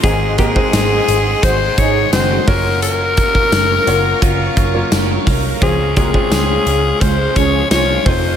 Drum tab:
HH |x-x-x-x-x-x-x-o-|x-x-x-x-x-x-x-o-|x-x-x-x-x-x-x-o-|
TB |----x-------x---|----x-------x---|----x-------x---|
SD |----o-------o---|----o-------o---|----o-------o---|
BD |o-oo----o-o---o-|--oo----o-o---o-|o-oo----o-o---o-|